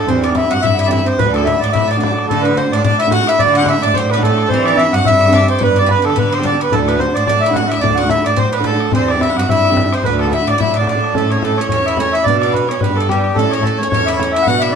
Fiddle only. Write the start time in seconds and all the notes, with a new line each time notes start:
Already playing: A4
0.09 C5
0.23 D5
0.36 E5
0.53 F#5
0.65 E5
0.81 E5
0.94 E5
1.09 C5
1.22 B4
1.37 A4
1.48 E5
1.65 D5
1.77 E5
1.92 D5
2.03 D5
2.29 A4
2.45 B4
2.58 C5
2.84 D5
3.01 E5
3.12 F#5
3.28 E5
3.42 D5
3.57 F#5
3.67 E5 F#5
3.84 D5
3.95 C5
4.12 B4
4.24 A4
4.53 C5
4.67 D5
4.80 E5
4.95 F#5
5.09 E5
5.35 D5
5.62 B4
5.79 D5
5.90 B4
6.08 A4
6.18 B4
6.33 C5
6.46 D5
6.60 B4
6.72 A4
6.85 A4 B4
6.99 C5
7.27 D5
7.44 E5
7.56 F#5
7.72 E5
7.83 D5
7.99 F#5
8.10 E5
8.26 D5
8.37 C5
8.54 B4
8.66 A4
8.94 C5
9.10 D5
9.21 E5
9.29 F#5
9.40 E5
9.50 E5
9.92 C5
10.04 B4
10.20 A4
10.31 E5
10.47 D5
10.60 E5
10.76 D5
10.85 D5
11.15 A4
11.31 C#5
11.43 A4
11.60 C#5
11.71 C#5
11.99 C#5
12.14 E5
12.27 D5
12.40 D5
12.54 B4
12.67 C#5
12.81 B4
12.96 A4
13.08 G4
13.36 A4
13.54 C#5
13.65 A4
13.82 C#5
13.91 C#5
14.08 E5
14.19 C#5
14.35 E5
14.47 F#5
14.62 E5